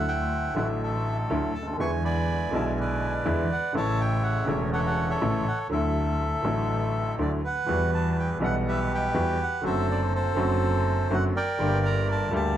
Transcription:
Already playing: D2 D3 F#3 A3 E4 F#5
0.08 E5 G5
0.54 A1 A2 D3 F#3 A3 E4 F#5
0.83 A4 E5
1.30 D2 D3 F#3 A3 E4
1.55 D2 A5
1.62 C#2
1.67 D2
1.73 D#2
1.78 E2 D3 E3 G#3 B3 G#5 C#6
1.82 E4
2.05 D5 G#5 B5
2.51 B1 B2 D3 G#3 B3 A5
2.55 E4
2.80 B4 D5 G#5
3.25 E2 D3 E3 G#3 B3 E4
3.52 F#5
3.73 A1 A2 C#3 E3 A3 E5
3.77 E4 C#5 A5
4.01 G5
4.23 F#5
4.45 E1 E2 C#3 E3 A3 E4 E5
4.73 A4 C#5 F#5
4.79 E5
4.86 F#5
5.10 A4 C#5 E5
5.22 A1 A2 C#3 E3 A3 E4
5.48 F#5
5.70 D2 D3 F#3 A3 E4 A4 E5
6.43 A1 A2 D3 F#3 A3
6.47 E4
7.18 D2 D3 F#3 A3 E4 D5
7.44 B4 F#5
7.68 E2 E3 G3 B3 F#4
7.94 A5
8.12 A5
8.19 G5
8.40 B1 B2 E3 G3 B3
8.44 F#5
8.67 G4 B4 E5
8.94 B4 G5
9.14 E2 E3 G3 B3 F#4
9.43 F#5
9.62 F#1 F#2 D3 F#3 A3 C4 F#4 C5 E5
9.66 A4
9.91 D5
10.15 A4 C5
10.35 F#1 F#2 D3 F#3 A3 C4
10.39 F#4
11.10 F#1 F#2 D3 F#3 A3 C4 F#4 F#5
11.36 A#4 D5 G5
11.59 G1 G2 D3 G3 A#3 G4
11.86 A#5
12.12 A5
12.31 D2 D3 G3 A#3 G4
12.36 A5

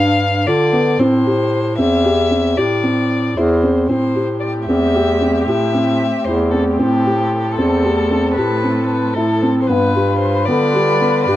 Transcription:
Already playing: G2 D4 F5
0.47 D3 F4 D5
0.73 B3
0.99 A2 C4 C5
1.26 G4
1.78 E2 C4 E5
2.04 G4
2.31 C4
2.57 A2 G4 D5
2.84 C4
3.37 E2 E4 C5
3.63 C4
3.89 A2 A3 C4 G4 C5
4.15 G4
4.40 D5
4.67 E2 C4 E5
4.95 G4
5.21 C4
5.46 A2 G4 E5
5.74 C4
6.25 E2 E4 C5
6.51 C4 A4
6.77 A2 C4 G4 A4
7.06 G4
7.55 E2 C4 A4
7.84 G4
8.11 C4
8.35 A2 G4 B4
8.64 C4
8.88 B4
9.14 A2 E4 A4
9.43 C4
9.62 C5
9.67 G2 G3 B3 F4 B4
9.95 G4
10.19 C5
10.45 D3 B3 D5
10.74 G4
11.01 B3
11.24 G2 G4 D5

